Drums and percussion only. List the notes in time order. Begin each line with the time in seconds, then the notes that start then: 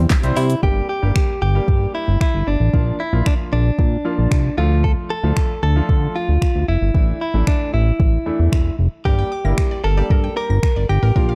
0.10 kick, snare, clap, closed hi-hat, shaker
0.23 closed hi-hat, shaker
0.36 open hi-hat, shaker
0.50 closed hi-hat, shaker
0.63 kick
1.16 finger snap, kick
1.68 kick
2.21 finger snap, kick
2.74 kick
3.26 finger snap, kick
3.79 kick
4.31 finger snap, kick
4.84 kick
5.37 finger snap, kick
5.89 kick
6.42 finger snap, kick
6.95 kick
7.47 finger snap, kick
8.00 kick
8.52 finger snap, kick
9.05 kick
9.58 finger snap, kick
10.10 kick
10.63 finger snap, kick
11.16 kick